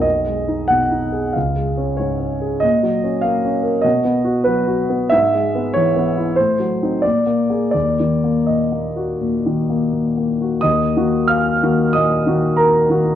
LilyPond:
<<
  \new Staff \with { instrumentName = "Grand piano" } { \time 4/4 \key ees \minor \tempo 4 = 93 ees''4 ges''4 f''4 des''4 | ees''4 f''4 dis''4 b'4 | e''4 des''4 c''4 d''4 | d''4 ees''2~ ees''8 r8 |
<ees'' ees'''>4 <f'' f'''>4 <ees'' ees'''>4 <bes' bes''>4 | }
  \new Staff \with { instrumentName = "Grand piano" } { \time 4/4 \key ees \minor \tuplet 3/2 { ces,8 aes8 ees'8 ces8 ees'8 aes'8 des,8 aes8 des'8 aes,8 des'8 aes'8 } | \tuplet 3/2 { bes,8 ges8 des'8 bes8 des'8 bes'8 b,8 b8 fis'8 fis8 fis'8 b8 } | \tuplet 3/2 { gis,8 gis8 b8 e8 b8 e'8 a,8 fis8 <c' ees'>8 bes,8 bes8 <bes aes'>8 } | \tuplet 3/2 { ees,8 ees8 bes8 bes,8 bes8 ges'8 bes,8 ees8 bes8 bes,8 bes8 ges'8 } |
ees,8 <ees bes ges'>4 <ees bes ges'>8 bes,8 <ees bes ges'>4 <ees bes ges'>8 | }
>>